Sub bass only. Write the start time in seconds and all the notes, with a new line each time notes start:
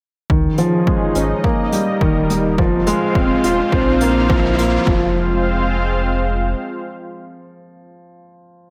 0.30 C#2
1.15 G#1
2.01 D#1
2.58 F1
3.15 D#1
3.44 D#1
3.72 A#1
4.87 F1